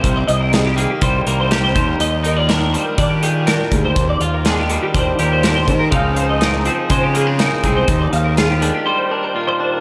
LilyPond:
<<
  \new Staff \with { instrumentName = "Clean electric guitar" } { \time 4/4 \key ees \major \tempo 4 = 122 c''16 d''16 ees''16 bes'16 aes'16 g'16 aes'16 g'16 c''8 bes'16 c''16 bes'16 c''8 bes'16 | ees''8 bes'16 d''16 bes'8 c''16 bes'16 d''16 g'16 aes'8 bes'8 aes'16 c''16~ | c''16 d''16 f''16 bes'16 aes'16 g'16 aes'16 g'16 c''8 bes'16 c''16 bes'16 c''8 bes'16 | f''8 c''16 ees''16 bes'8 c''16 aes'16 c''16 g'16 aes'8 bes'8 aes'16 c''16~ |
c''16 d''16 f''16 bes'16 aes'16 g'16 aes'16 g'16 c''8 bes'16 c''16 bes'16 c''8 bes'16 | }
  \new Staff \with { instrumentName = "Clean electric guitar" } { \time 4/4 \key ees \major << { bes4. bes8 g8 bes8 g'8 r8 | r8 ees'16 f'16 d'8 g8 d'8 g'8 d'8 r8 | r8 f'8 d'8 g8 d'8 g'8 d'8 r8 | <f aes c' ees'>4 ees'8 c'8 aes8 bes16 c'16 ees'8 c'8 |
r4 f'8 d'8 g8 d'8 f'8 d'8 | } \\ { <c ees>4. ees4. c8 ees,8~ | ees,4 ees4. bes,4 ees,8~ | ees,4 ees4. bes,4 ees,8 | des4. f4. des4 |
ees,4. ees4. bes,4 | } >> }
  \new Staff \with { instrumentName = "Fingered electric bass" } { \clef bass \time 4/4 \key ees \major c,8 c,4. c,8 c,4 ees,8 | ees,2 ees4. d,8 | ees,8 ees,4. ees,8 ees,4 ees8 | des,2 des4. c,8 |
ees,8 ees,4. r2 | }
  \new DrumStaff \with { instrumentName = "Drums" } \drummode { \time 4/4 <hh bd>8 hh8 <hh sn>8 hh8 <hh bd>8 hh8 <hh sn>8 <hh bd>8 | hh8 hh8 <hh sn>8 hh8 <hh bd>8 hh8 <hh sn>8 <hh bd>8 | <hh bd>8 hh8 <hh sn>8 hh8 <hh bd>8 hh8 <hh sn>8 <hh bd>8 | <hh bd>8 hh8 <hh sn>8 hh8 <hh bd>8 hh8 <hh sn>8 <hh bd>8 |
<hh bd>8 hh8 <hh sn>8 hh8 r4 r4 | }
>>